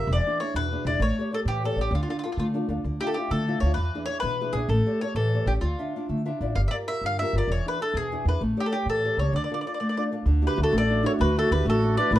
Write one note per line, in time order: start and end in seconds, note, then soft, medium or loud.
0.07 0.18 E1 medium
0.07 0.41 E3 medium
0.13 0.40 D5 medium
0.26 0.40 D4 soft
0.26 0.40 E4 soft
0.26 0.41 G#4 soft
0.40 0.66 D4 soft
0.40 0.65 E4 soft
0.40 0.66 G#4 soft
0.40 0.54 C#5 medium
0.54 0.75 E2 medium
0.54 0.85 B2 medium
0.54 0.85 B4 medium
0.72 0.85 D4 soft
0.72 0.86 E4 soft
0.72 0.86 G#4 soft
0.85 0.95 E1 medium
0.85 0.98 D4 soft
0.85 0.99 E4 soft
0.85 0.99 G#4 medium
0.85 1.02 D5 medium
1.00 1.10 A1 medium
1.00 1.31 A3 medium
1.00 1.33 C#5 medium
1.19 1.31 G4 soft
1.19 1.32 A4 soft
1.19 1.33 C#5 soft
1.33 1.57 G4 soft
1.33 1.57 A4 soft
1.33 1.39 A4 medium
1.33 1.58 C#5 soft
1.45 1.66 A2 medium
1.45 1.78 E3 medium
1.45 1.62 G4 medium
1.64 1.77 G4 soft
1.64 1.77 A4 soft
1.64 1.78 A4 medium
1.64 1.78 C#5 soft
1.76 1.86 A1 medium
1.76 1.90 G4 soft
1.76 1.90 A4 soft
1.76 1.91 C#5 medium
1.81 1.93 G4 medium
1.91 2.02 D2 medium
1.91 2.23 D3 medium
1.95 2.01 F4 soft
2.03 2.09 F4 soft
2.08 2.23 D4 soft
2.08 2.23 F4 soft
2.08 2.16 F4 soft
2.08 2.24 A4 soft
2.19 2.22 F4 soft
2.24 2.49 D4 soft
2.24 2.30 F4 soft
2.24 2.49 F4 soft
2.24 2.50 A4 soft
2.32 2.38 F4 soft
2.37 2.58 D3 medium
2.37 2.69 A3 medium
2.37 2.46 F4 soft
2.54 2.68 D4 soft
2.54 2.68 F4 soft
2.54 2.68 A4 soft
2.69 2.79 D2 medium
2.69 2.81 D4 soft
2.69 2.82 F4 soft
2.69 2.82 A4 soft
2.84 2.95 D2 medium
2.84 3.16 D3 soft
3.01 3.16 D4 soft
3.01 3.16 E4 soft
3.01 3.16 F4 soft
3.01 3.08 G4 medium
3.07 3.15 A4 medium
3.14 3.42 D4 soft
3.14 3.42 E4 soft
3.14 3.42 F4 soft
3.14 3.29 G4 medium
3.30 3.51 D3 medium
3.30 3.61 A3 soft
3.30 3.60 A4 medium
3.48 3.63 D4 soft
3.48 3.63 E4 soft
3.48 3.63 F4 soft
3.60 3.72 D2 medium
3.60 3.75 D4 soft
3.60 3.76 E4 soft
3.60 3.74 C#5 medium
3.64 3.76 F4 medium
3.74 3.88 E2 medium
3.74 4.05 B4 medium
3.79 4.09 E3 medium
3.95 4.06 D4 soft
3.95 4.07 E4 soft
3.95 4.08 G#4 soft
4.06 4.33 D4 soft
4.06 4.33 E4 soft
4.06 4.34 G#4 soft
4.06 4.19 C#5 medium
4.20 4.54 B2 medium
4.20 4.43 E3 medium
4.20 4.54 B4 medium
4.41 4.55 D4 soft
4.41 4.56 E4 soft
4.41 4.56 G#4 soft
4.53 4.63 A#1 medium
4.53 4.68 D4 soft
4.53 4.68 G#4 medium
4.53 4.68 G#4 soft
4.57 4.68 E4 soft
4.68 4.79 A1 medium
4.68 5.01 A3 medium
4.68 4.99 A4 medium
4.86 5.01 G4 soft
4.86 5.01 A4 soft
4.86 5.02 C#5 soft
5.01 5.27 G4 soft
5.01 5.27 A4 soft
5.01 5.15 C#5 medium
5.01 5.27 C#5 soft
5.15 5.36 A2 medium
5.15 5.46 E3 medium
5.15 5.45 A4 medium
5.34 5.47 G4 soft
5.34 5.47 A4 soft
5.34 5.47 C#5 soft
5.46 5.56 A1 medium
5.46 5.52 G4 medium
5.46 5.60 G4 soft
5.46 5.60 A4 soft
5.46 5.60 C#5 soft
5.61 5.72 D2 medium
5.61 5.93 D3 medium
5.61 6.05 F4 medium
5.79 5.95 D4 soft
5.79 5.96 F4 soft
5.79 5.97 E5 soft
5.96 6.20 D4 soft
5.96 6.21 E4 soft
5.96 6.21 F4 soft
6.09 6.30 D3 medium
6.09 6.25 A3 soft
6.25 6.40 D4 soft
6.25 6.40 E4 soft
6.25 6.41 F4 soft
6.25 6.40 E5 soft
6.41 6.51 A1 medium
6.41 6.53 D4 soft
6.41 6.53 E4 soft
6.41 6.54 F4 soft
6.41 6.55 D5 medium
6.55 6.66 G1 medium
6.55 6.72 G3 soft
6.55 6.60 F5 medium
6.68 6.76 D5 medium
6.68 6.72 E5 medium
6.72 6.87 F4 soft
6.72 6.88 G4 soft
6.72 6.88 A#4 soft
6.88 7.13 F4 soft
6.88 7.14 G4 soft
6.88 7.14 A#4 soft
6.88 7.03 E5 medium
7.01 7.22 G2 medium
7.01 7.33 D3 soft
7.06 7.19 F5 medium
7.19 7.34 F4 soft
7.19 7.34 G4 soft
7.19 7.34 A#4 soft
7.19 7.35 E5 medium
7.33 7.43 G1 medium
7.33 7.47 F4 soft
7.33 7.47 G4 soft
7.33 7.47 A#4 medium
7.38 7.50 D5 medium
7.48 7.59 E1 medium
7.48 7.79 E3 medium
7.52 7.65 C#5 medium
7.66 7.79 D4 soft
7.66 7.79 E4 soft
7.66 7.80 G#4 soft
7.66 7.81 B4 medium
7.80 8.05 D4 soft
7.80 8.05 E4 soft
7.80 8.06 G#4 soft
7.80 7.95 A4 medium
7.94 8.14 E2 medium
7.94 8.25 B2 soft
7.94 8.25 G#4 medium
8.12 8.26 D4 soft
8.12 8.26 E4 soft
8.12 8.27 G#4 soft
8.25 8.35 E2 medium
8.25 8.39 D4 soft
8.25 8.39 E4 soft
8.25 8.39 G#4 medium
8.25 8.41 B4 medium
8.41 8.51 A1 medium
8.41 8.71 A3 medium
8.57 8.71 G4 soft
8.57 8.66 G4 medium
8.57 8.71 A4 soft
8.57 8.72 C#5 soft
8.66 8.72 A4 medium
8.72 8.97 G4 soft
8.72 8.86 G4 medium
8.72 8.97 A4 soft
8.72 8.98 C#5 soft
8.86 9.06 A2 medium
8.86 9.18 E3 soft
8.86 9.19 A4 medium
9.05 9.19 G4 soft
9.05 9.20 A4 soft
9.05 9.20 C#5 soft
9.17 9.27 C#2 medium
9.17 9.31 G4 soft
9.17 9.33 C#5 medium
9.21 9.32 A4 soft
9.21 9.32 C#5 medium
9.32 9.43 D2 medium
9.32 9.64 D3 medium
9.32 9.42 D5 medium
9.44 9.50 D5 soft
9.51 9.65 D4 soft
9.51 9.65 F4 soft
9.51 9.66 A4 soft
9.51 9.59 D5 soft
9.61 9.66 D5 soft
9.66 9.91 D4 soft
9.66 9.91 F4 soft
9.66 9.91 A4 soft
9.66 9.72 D5 soft
9.74 9.79 D5 soft
9.80 10.11 A3 medium
9.80 9.87 D5 soft
9.89 9.95 D5 soft
9.97 10.11 D4 soft
9.97 10.11 F4 soft
9.97 10.11 A4 soft
9.97 10.03 D5 soft
10.12 10.24 D4 soft
10.12 10.24 F4 soft
10.12 10.24 A4 soft
10.26 10.46 D2 medium
10.26 10.57 D3 medium
10.42 10.55 D4 soft
10.42 10.55 E4 soft
10.42 10.56 F#4 soft
10.42 10.59 G4 medium
10.47 10.59 B4 medium
10.56 10.68 D2 medium
10.56 10.82 D4 soft
10.56 10.82 E4 soft
10.56 10.83 F#4 soft
10.62 10.74 F#4 soft
10.62 10.75 A4 medium
10.72 11.03 A1 medium
10.72 11.03 A3 medium
10.72 11.04 A4 medium
10.78 11.05 D5 medium
10.88 11.02 D4 soft
10.88 11.02 E4 soft
10.88 11.03 F#4 medium
11.03 11.28 D4 medium
11.03 11.29 E4 soft
11.03 11.29 F#4 medium
11.03 11.11 C#5 medium
11.08 11.14 A4 medium
11.19 11.40 D2 medium
11.19 11.49 A3 medium
11.19 11.35 F#4 medium
11.19 11.37 B4 medium
11.36 11.50 D4 soft
11.36 11.51 E4 soft
11.36 11.52 F#4 soft
11.36 11.51 A4 medium
11.41 11.53 F#4 medium
11.51 11.61 D2 medium
11.51 11.76 D4 soft
11.51 11.77 E4 soft
11.51 11.77 F#4 soft
11.51 11.66 G4 medium
11.51 11.65 B4 medium
11.65 11.95 A1 medium
11.65 11.96 A3 medium
11.65 11.96 F#4 medium
11.70 11.97 A4 medium
11.83 11.97 D4 soft
11.83 11.97 E4 soft
11.83 11.98 F#4 medium
11.97 12.09 D4 medium
11.97 12.10 E4 medium
11.97 12.10 F#4 medium
11.97 12.12 B4 medium
11.97 12.11 D5 medium
12.11 12.19 A1 medium
12.11 12.19 A3 medium
12.11 12.19 E4 medium
12.16 12.19 B4 medium